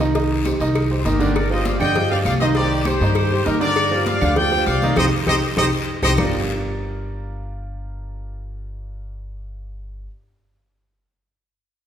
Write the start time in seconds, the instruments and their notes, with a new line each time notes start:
Already playing: upright bass C2
0.00 upright piano D#3 D#4 D#5, high conga, short guiro
0.15 upright piano D#3 D#4 D#5, cowbell, high conga, long guiro
0.31 high conga
0.45 upright piano G3 G4 C5, cowbell, high conga, short guiro, claves
0.60 upright bass C2, upright piano D#3 D#4 D#5, short guiro
0.75 cowbell, high conga, long guiro, claves
0.90 upright piano G3 G4 C5, high conga
0.99 trumpet section C5
1.04 upright bass G1, upright piano D#3 D#4 D#5, trumpet section G4 A#4, cowbell, high conga, short guiro
1.19 upright piano D3 D4 D5, cowbell, high conga, short guiro
1.35 trumpet section A#4 D5, cowbell, high conga, long guiro, claves
1.50 upright piano F3 F4 G4, trumpet section C5 D#5, high conga
1.64 trumpet section D5 F5, cowbell, high conga, short guiro
1.79 upright bass G2, upright piano D3 D4 D5, trumpet section D#5 G5, high conga, low conga, short guiro, claves
1.96 upright piano F3 F4 G4, cowbell, high conga, low conga, long guiro
2.10 upright piano F3 F4 G4, trumpet section D5 F5, high conga
2.25 upright bass C2, trumpet section D5 F5, cowbell, high conga, short guiro, claves
2.40 upright piano D#3 D#4 D#5, trumpet section C5 D#5, high conga, short guiro
2.55 upright piano D#3 D#4 C5, trumpet section G4 D5, cowbell, high conga, long guiro
2.85 upright piano G3 G4 C5, trumpet section G4 C5, cowbell, high conga, short guiro, claves
3.01 upright bass G2, upright piano D#3 D#4 D#5, short guiro
3.15 cowbell, high conga, long guiro, claves
3.31 upright piano G3 G4 C5, high conga
3.45 upright bass G2, upright piano D#3 D#4 D#5, trumpet section G4 A#4, cowbell, high conga, short guiro
3.60 upright piano D3 D4 D5, trumpet section A#4 D5, cowbell, short guiro
3.76 cowbell, high conga, long guiro, claves
3.91 upright piano F3 F4 G4, high conga
4.06 trumpet section D5 F5, cowbell, high conga, short guiro
4.21 upright bass D2, upright piano D3 D4 D5, high conga, low conga, short guiro, claves
4.36 upright piano F3 F4 G4, trumpet section D5 G5, cowbell, high conga, low conga, long guiro
4.52 upright piano F3 F4 G4, high conga
4.66 upright bass C2, trumpet section D5 F5, cowbell, high conga, short guiro, claves
4.82 upright piano D#3 D#4 D#5, high conga, short guiro
4.96 upright bass C2, upright piano C4 D#4 G4, trumpet section G4 C5 D#5, cowbell, low conga, long guiro, claves
5.26 upright bass C2, upright piano C4 D#4 G4, trumpet section G4 C5 D#5, cowbell, low conga, long guiro, claves
5.57 upright bass C2, upright piano C4 D#4 G4, trumpet section G4 C5 D#5, cowbell, low conga, long guiro, claves
6.02 upright bass C2, upright piano C4 D#4 G4, trumpet section G4 C5 D#5, cowbell, low conga, long guiro, claves
6.17 upright bass G1, upright piano G3 D4 F4 G4 A#4 D5, low bongo, low conga, long guiro, claves